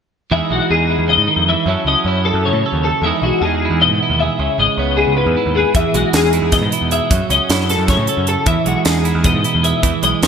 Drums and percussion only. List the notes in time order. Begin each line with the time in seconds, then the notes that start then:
5.75 kick, closed hi-hat
5.94 closed hi-hat
6.13 snare, closed hi-hat
6.33 closed hi-hat
6.52 kick, snare, closed hi-hat
6.72 closed hi-hat
6.91 closed hi-hat
7.11 kick, closed hi-hat
7.30 closed hi-hat
7.50 snare, closed hi-hat
7.69 snare, closed hi-hat
7.88 kick, snare, closed hi-hat
8.07 closed hi-hat
8.27 closed hi-hat
8.46 kick, closed hi-hat
8.66 closed hi-hat
8.85 snare, closed hi-hat
9.05 closed hi-hat
9.24 kick, closed hi-hat
9.44 closed hi-hat
9.64 closed hi-hat
9.83 kick, closed hi-hat
10.03 closed hi-hat
10.23 snare, closed hi-hat